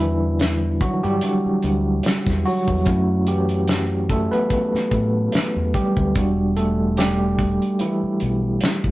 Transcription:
0.00 0.78 E2 medium
0.00 2.88 D3 medium
0.00 0.79 E3 medium
0.00 0.78 G3 medium
0.00 0.78 D4 soft
0.00 0.84 E4 medium
0.00 0.78 F#4 medium
0.39 snare loud
0.39 closed hi-hat medium
0.81 1.03 F#3 medium
0.81 1.02 F#4 medium
0.81 muted fingered electric bass stroke soft
0.81 kick medium
0.81 closed hi-hat medium
1.03 1.20 G2 medium
1.03 1.22 G3 medium
1.03 2.50 G4 medium
1.03 closed hi-hat soft
1.21 1.60 G3 soft
1.21 1.60 D4 soft
1.21 1.60 F#4 medium
1.21 closed hi-hat medium
1.46 muted fingered electric bass stroke soft
1.62 1.99 D2 medium
1.62 closed hi-hat medium
2.03 muted fingered electric bass stroke soft
2.03 snare loud
2.03 closed hi-hat medium
2.27 2.43 E2 medium
2.27 kick medium
2.27 snare soft
2.45 3.25 F#3 medium
2.45 3.30 F#4 medium
2.45 open hi-hat soft
2.68 2.87 E2 medium
2.68 kick medium
2.86 4.28 F#2 medium
2.86 4.11 A3 medium
2.86 6.12 C#4 soft
2.86 6.12 E4 medium
2.86 kick loud
2.86 closed hi-hat medium
3.27 4.07 E3 medium
3.27 4.13 G4 medium
3.27 closed hi-hat medium
3.49 closed hi-hat medium
3.68 snare loud
3.68 closed hi-hat medium
4.09 4.32 A3 medium
4.09 4.33 A4 medium
4.09 kick medium
4.09 closed hi-hat medium
4.31 5.71 B3 medium
4.31 5.70 B4 medium
4.31 closed hi-hat soft
4.50 kick loud
4.50 closed hi-hat medium
4.74 muted fingered electric bass stroke soft
4.74 snare soft
4.91 5.27 A2 medium
4.91 kick medium
4.91 closed hi-hat medium
5.32 muted fingered electric bass stroke soft
5.32 snare loud
5.32 closed hi-hat medium
5.56 5.72 E2 medium
5.74 6.15 G3 medium
5.74 6.59 G4 medium
5.74 kick loud
5.74 closed hi-hat medium
5.97 6.13 D2 medium
5.97 kick medium
6.15 7.57 E1 loud
6.15 6.72 G3 medium
6.15 6.72 D4 medium
6.15 6.72 F#4 medium
6.15 kick loud
6.15 closed hi-hat medium
6.57 6.96 A3 medium
6.57 6.99 A4 medium
6.57 closed hi-hat medium
6.97 7.77 G3 medium
6.97 7.83 G4 medium
6.97 snare loud
6.97 closed hi-hat medium
7.39 kick medium
7.39 closed hi-hat medium
7.62 closed hi-hat soft
7.79 8.91 E3 medium
7.79 8.91 E4 medium
7.79 closed hi-hat medium
8.03 muted fingered electric bass stroke soft
8.20 8.57 B1 medium
8.20 closed hi-hat medium
8.61 muted fingered electric bass stroke soft
8.61 snare loud
8.61 closed hi-hat medium
8.84 8.91 F#1 medium
8.84 kick medium

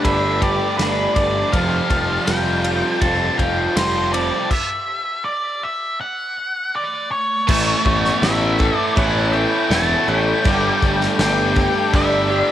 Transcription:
0.00 1.51 G2 medium
0.00 1.52 D3 medium
0.00 0.42 G3 medium
0.00 1.52 G3 medium
0.00 0.78 A3 medium
0.00 1.16 A3 medium
0.00 0.41 B3 medium
0.00 0.78 D4 medium
0.00 0.40 G4 medium
0.00 0.41 G4 medium
0.00 4.47 G4 medium
0.00 0.80 B4 medium
0.00 1.50 D5 medium
0.00 1.50 A5 medium
0.00 1.49 B5 medium
0.04 0.58 G1 loud
0.04 0.78 D4 medium
0.04 1.15 A4 medium
0.04 1.53 B4 medium
0.04 0.43 E5 loud
0.04 kick loud
0.04 ride medium
0.41 1.54 B3 medium
0.41 1.53 G4 medium
0.41 1.54 G4 medium
0.41 0.77 D5 medium
0.41 kick medium
0.41 ride medium
0.77 1.06 G1 medium
0.77 2.28 A3 medium
0.77 1.53 D4 medium
0.77 1.54 D4 medium
0.77 1.14 B4 medium
0.77 snare loud
0.77 ride medium
1.15 1.43 G1 medium
1.15 2.64 A3 medium
1.15 1.53 D4 medium
1.15 1.55 A4 medium
1.15 1.50 D5 medium
1.15 kick medium
1.15 ride medium
1.52 1.80 F1 medium
1.52 4.49 F2 medium
1.52 4.49 C3 medium
1.52 3.39 F3 medium
1.52 3.40 F3 medium
1.52 4.50 F3 loud
1.52 3.39 G3 medium
1.52 2.26 F5 loud
1.52 4.49 F5 medium
1.52 4.49 A5 medium
1.52 4.49 C6 medium
1.52 kick loud
1.52 ride medium
1.90 2.17 F1 medium
1.90 3.39 C4 medium
1.90 3.76 A4 medium
1.90 kick medium
1.90 ride medium
2.26 2.82 F1 medium
2.26 3.75 G3 medium
2.26 3.38 F4 medium
2.26 3.01 A4 medium
2.26 3.04 G5 loud
2.26 snare loud
2.26 ride loud
2.64 4.12 G3 medium
2.64 3.36 F4 medium
2.64 3.75 F4 medium
2.64 ride medium
3.01 3.29 F1 medium
3.01 3.75 C4 medium
3.01 4.51 A4 medium
3.01 4.12 A4 medium
3.01 3.40 A5 loud
3.01 kick loud
3.01 ride medium
3.37 3.66 F1 medium
3.37 4.51 C4 medium
3.37 4.50 F4 medium
3.37 4.51 F4 medium
3.37 3.77 G5 medium
3.37 kick medium
3.37 ride medium
3.76 4.30 F1 medium
3.76 4.51 G3 medium
3.76 4.51 C4 medium
3.76 4.51 F4 medium
3.76 4.12 C5 medium
3.76 snare loud
3.76 ride loud
4.13 4.51 G3 medium
4.13 4.51 C4 medium
4.13 4.51 A4 medium
4.13 4.52 D5 medium
4.13 ride medium
4.51 5.28 E5 loud
4.51 kick loud
4.51 crash medium
5.25 5.63 D5 loud
5.63 6.00 E5 loud
6.01 7.08 F#5 loud
6.76 7.09 D5 medium
7.11 8.26 C#5 loud
7.47 7.72 A1 loud
7.47 8.94 A2 medium
7.47 7.84 E3 medium
7.47 8.95 E3 loud
7.47 10.43 A3 medium
7.47 9.76 A3 medium
7.47 8.99 A3 loud
7.47 12.52 A4 medium
7.47 10.42 E5 medium
7.47 12.52 B5 medium
7.47 10.42 C#6 medium
7.47 kick loud
7.47 crash loud
7.47 crash medium
7.85 8.09 A1 medium
7.85 9.32 E3 medium
7.85 9.71 B3 medium
7.85 kick medium
8.05 snare soft
8.22 8.70 A1 loud
8.22 9.70 B3 medium
8.22 10.08 B3 medium
8.22 9.34 E4 medium
8.22 8.79 E5 loud
8.22 snare loud
8.22 crash medium
8.59 10.47 A4 medium
8.59 9.34 A4 medium
8.59 10.50 A4 medium
8.59 kick loud
8.79 8.98 D5 loud
8.96 9.45 A1 medium
8.96 10.43 A2 medium
8.96 10.43 E3 medium
8.96 10.48 A3 medium
8.96 10.07 C#4 medium
8.96 10.45 E4 medium
8.96 10.46 C#5 medium
8.96 9.32 F#5 loud
8.96 kick loud
8.96 crash medium
9.33 10.44 E3 medium
9.33 10.08 E4 medium
9.33 10.08 A4 medium
9.33 9.71 G5 medium
9.69 9.94 E1 loud
9.69 10.45 B3 medium
9.69 10.46 B3 medium
9.69 10.45 C#5 medium
9.69 10.08 A5 loud
9.69 snare loud
9.69 crash medium
10.08 10.32 A1 medium
10.08 10.45 C#4 medium
10.08 10.46 E4 medium
10.08 10.47 A4 medium
10.08 11.19 G5 loud
10.44 10.69 G1 medium
10.44 11.91 G2 loud
10.44 11.92 D3 loud
10.44 12.30 G3 medium
10.44 10.81 G3 medium
10.44 12.31 G3 medium
10.44 12.52 G5 medium
10.44 12.52 D6 loud
10.44 kick loud
10.44 crash medium
10.48 11.95 G3 loud
10.82 11.06 G1 medium
10.82 12.30 G3 medium
10.82 12.52 A3 medium
10.82 kick medium
11.01 snare soft
11.18 11.67 G1 loud
11.18 12.52 A3 medium
11.18 12.52 B3 medium
11.18 12.29 D4 medium
11.18 11.95 G5 loud
11.18 snare loud
11.18 crash medium
11.56 12.29 G4 medium
11.56 12.52 G4 medium
11.56 12.52 A4 medium
11.56 kick loud
11.93 12.41 G1 medium
11.93 12.52 G2 medium
11.93 12.52 D3 medium
11.93 12.52 G3 medium
11.93 12.52 D4 medium
11.93 12.52 B4 medium
11.93 12.52 E5 loud
11.93 kick loud
11.93 crash medium
12.30 12.52 G3 medium
12.30 12.52 D4 medium
12.30 12.52 G4 medium

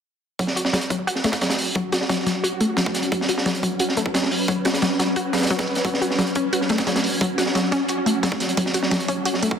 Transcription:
0.39 0.45 F#3 medium
0.39 9.59 F#3 medium
0.39 9.59 C#4 medium
0.39 3.11 F#4 medium
0.39 kick loud
0.39 closed hi-hat medium
0.47 snare soft
0.56 0.66 F#4 medium
0.56 closed hi-hat medium
0.65 snare medium
0.73 0.83 F#3 medium
0.73 snare loud
0.73 closed hi-hat medium
0.81 closed hi-hat soft
0.90 1.04 F#3 medium
0.90 kick medium
0.90 closed hi-hat medium
1.07 1.13 F#4 medium
1.07 closed hi-hat medium
1.15 snare soft
1.24 1.34 A3 medium
1.24 snare loud
1.24 closed hi-hat medium
1.32 kick loud
1.32 snare medium
1.32 closed hi-hat medium
1.41 1.47 F#3 medium
1.41 snare loud
1.41 closed hi-hat medium
1.50 snare medium
1.50 closed hi-hat medium
1.58 closed hi-hat medium
1.58 open hi-hat medium
1.75 1.81 F#3 medium
1.75 kick loud
1.75 closed hi-hat medium
1.92 2.02 F#4 medium
1.92 snare soft
1.92 closed hi-hat medium
2.01 snare soft
2.09 2.19 F#3 medium
2.09 snare loud
2.09 closed hi-hat medium
2.26 2.41 F#3 medium
2.26 snare soft
2.26 closed hi-hat medium
2.44 2.49 F#4 medium
2.44 closed hi-hat medium
2.61 2.70 A3 medium
2.61 closed hi-hat medium
2.77 2.83 F#3 medium
2.77 snare loud
2.77 closed hi-hat medium
2.86 kick loud
2.95 snare soft
2.95 closed hi-hat medium
3.03 closed hi-hat soft
3.12 3.17 F#3 medium
3.12 5.84 B4 medium
3.12 kick loud
3.12 closed hi-hat medium
3.21 snare soft
3.29 3.38 F#4 medium
3.29 closed hi-hat medium
3.38 snare medium
3.46 3.55 F#3 medium
3.46 snare loud
3.46 closed hi-hat medium
3.55 closed hi-hat soft
3.63 3.77 F#3 medium
3.63 kick medium
3.63 closed hi-hat medium
3.79 3.86 F#4 medium
3.79 closed hi-hat medium
3.89 snare soft
3.97 4.06 A3 medium
3.97 closed hi-hat medium
4.06 kick loud
4.14 4.20 F#3 medium
4.14 snare loud
4.14 closed hi-hat medium
4.22 snare soft
4.31 closed hi-hat medium
4.31 open hi-hat medium
4.48 4.54 F#3 medium
4.48 kick loud
4.48 closed hi-hat medium
4.65 4.75 F#4 medium
4.65 snare loud
4.65 closed hi-hat medium
4.74 snare loud
4.74 closed hi-hat medium
4.82 4.92 F#3 medium
4.82 snare loud
4.82 closed hi-hat medium
4.99 5.13 F#3 medium
4.99 snare soft
4.99 closed hi-hat medium
5.16 5.22 F#4 medium
5.16 closed hi-hat medium
5.33 5.43 F#3 medium
5.33 snare medium
5.33 closed hi-hat medium
5.37 snare medium
5.37 closed hi-hat medium
5.42 snare medium
5.42 closed hi-hat medium
5.46 snare medium
5.46 closed hi-hat medium
5.50 5.60 F#3 medium
5.50 snare soft
5.50 closed hi-hat medium
5.58 kick loud
5.58 snare loud
5.58 closed hi-hat medium
5.68 closed hi-hat medium
5.75 snare soft
5.75 closed hi-hat medium
5.85 5.90 F#3 medium
5.85 8.56 F#4 medium
5.85 kick loud
5.85 closed hi-hat medium
5.94 snare soft
6.02 6.11 F#4 medium
6.02 closed hi-hat medium
6.10 snare soft
6.19 6.28 F#3 medium
6.19 snare loud
6.19 closed hi-hat medium
6.27 closed hi-hat soft
6.35 6.50 C#4 loud
6.35 kick medium
6.35 closed hi-hat medium
6.53 6.58 F#4 medium
6.53 closed hi-hat medium
6.61 snare soft
6.69 6.79 A3 medium
6.69 snare loud
6.69 closed hi-hat medium
6.78 kick loud
6.78 snare medium
6.78 closed hi-hat medium
6.87 6.92 F#3 medium
6.87 snare loud
6.87 closed hi-hat medium
6.96 snare loud
6.96 closed hi-hat medium
7.04 closed hi-hat medium
7.04 open hi-hat medium
7.21 7.27 F#3 medium
7.21 kick loud
7.21 closed hi-hat medium
7.38 7.47 F#4 medium
7.38 snare soft
7.38 closed hi-hat medium
7.46 snare soft
7.55 7.64 F#3 medium
7.55 snare loud
7.55 closed hi-hat medium
7.71 7.86 C#4 loud
7.71 snare soft
7.71 closed hi-hat medium
7.88 7.95 F#4 medium
7.88 closed hi-hat medium
8.06 8.15 A3 medium
8.06 closed hi-hat medium
8.23 8.29 F#3 medium
8.23 snare loud
8.23 closed hi-hat medium
8.32 kick loud
8.40 snare soft
8.40 closed hi-hat medium
8.49 closed hi-hat soft
8.57 8.63 F#3 medium
8.57 9.59 A4 medium
8.57 kick loud
8.57 closed hi-hat medium
8.66 snare soft
8.74 8.84 F#4 medium
8.74 closed hi-hat medium
8.83 snare medium
8.91 9.01 F#3 medium
8.91 snare loud
8.91 closed hi-hat medium
9.00 closed hi-hat soft
9.08 9.22 C#4 loud
9.08 kick medium
9.08 closed hi-hat medium
9.25 9.31 F#4 medium
9.25 closed hi-hat medium
9.34 snare soft
9.43 9.52 A3 medium
9.43 closed hi-hat medium
9.51 kick loud

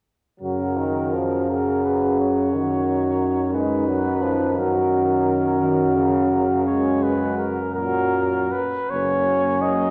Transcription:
0.40 4.54 F#2 soft
0.40 2.55 C#3 soft
0.40 0.79 F#3 soft
0.40 1.46 F#4 soft
0.40 1.45 A#4 soft
0.77 1.15 D#3 soft
1.13 1.51 F3 soft
1.49 2.51 F#3 soft
1.49 2.52 G#4 soft
1.49 1.86 A#4 soft
1.85 2.19 B4 soft
2.20 3.53 C#5 soft
2.52 5.61 D#3 soft
2.52 3.55 F#3 soft
2.52 3.54 F#4 soft
3.53 3.89 G#3 soft
3.53 4.58 D#4 soft
3.53 4.61 B4 soft
3.88 4.23 F#3 soft
4.22 4.57 F3 soft
4.57 8.53 F#2 soft
4.57 6.62 F#3 soft
4.57 5.58 F#4 soft
4.57 6.66 A#4 soft
5.61 5.98 D#3 medium
5.61 6.64 F#4 soft
5.96 6.30 C#3 medium
6.31 7.44 C#3 soft
6.66 7.45 G#3 soft
6.66 7.59 F#4 soft
6.66 7.04 C#5 soft
7.03 7.37 B4 medium
7.38 7.74 A#4 soft
7.74 8.53 A#2 soft
7.74 8.53 F#3 soft
7.74 8.55 F#4 soft
7.74 8.53 A#4 medium
8.52 8.92 B4 soft
8.89 9.90 F#1 soft
8.89 9.90 F#3 soft
8.89 9.90 A#3 soft
8.89 9.90 C#4 soft
8.89 9.63 C#5 medium
9.62 9.90 D#5 medium

